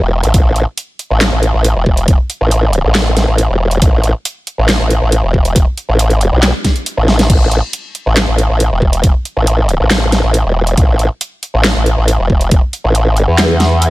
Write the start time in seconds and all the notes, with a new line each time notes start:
0.02 E1
0.23 A1, closed hi-hat
0.34 A1, kick, closed hi-hat
0.56 closed hi-hat
0.78 closed hi-hat
0.99 closed hi-hat
1.10 A1
1.21 snare, clap, closed hi-hat
1.32 A1
1.43 closed hi-hat
1.54 A1
1.64 closed hi-hat
1.76 E1
1.86 kick
1.97 closed hi-hat
2.08 kick, closed hi-hat
2.30 closed hi-hat
2.41 A1
2.51 closed hi-hat
2.73 closed hi-hat
2.84 A1
2.95 snare, clap, closed hi-hat
3.17 snare, closed hi-hat
3.28 A1
3.38 closed hi-hat
3.50 E1
3.71 closed hi-hat
3.82 A1, kick, closed hi-hat
4.04 closed hi-hat
4.25 closed hi-hat
4.47 closed hi-hat
4.58 A1
4.69 snare, clap, closed hi-hat
4.80 A1
4.91 closed hi-hat
5.02 A1
5.12 closed hi-hat
5.23 E1
5.34 kick
5.45 closed hi-hat
5.56 kick, closed hi-hat
5.78 closed hi-hat
5.89 A1
5.99 closed hi-hat
6.10 closed hi-hat
6.21 closed hi-hat
6.32 B1
6.43 snare, clap, closed hi-hat
6.64 kick, snare, closed hi-hat
6.76 closed hi-hat
6.86 closed hi-hat
6.97 A1
7.08 snare
7.19 snare, closed hi-hat
7.30 A1, kick, closed hi-hat, crash
7.52 closed hi-hat
7.73 closed hi-hat
7.95 closed hi-hat
8.06 A1
8.17 snare, clap, closed hi-hat
8.28 A1
8.38 closed hi-hat
8.50 A1
8.60 closed hi-hat
8.71 E1
8.82 kick
8.93 closed hi-hat
9.04 kick, closed hi-hat
9.25 closed hi-hat
9.37 A1
9.47 closed hi-hat
9.69 closed hi-hat
9.80 A1
9.91 snare, clap, closed hi-hat
10.12 snare, closed hi-hat
10.24 A1
10.34 closed hi-hat
10.45 E1
10.67 closed hi-hat
10.78 A1, kick, closed hi-hat
10.99 closed hi-hat
11.21 closed hi-hat
11.43 closed hi-hat
11.54 A1
11.64 snare, clap, closed hi-hat
11.76 A1
11.86 closed hi-hat
11.97 A1
12.08 closed hi-hat
12.19 E1
12.30 kick
12.41 closed hi-hat
12.51 kick, closed hi-hat
12.73 closed hi-hat
12.84 A1
12.95 closed hi-hat
13.17 closed hi-hat
13.28 E2
13.38 snare, clap, closed hi-hat
13.60 snare, closed hi-hat
13.82 closed hi-hat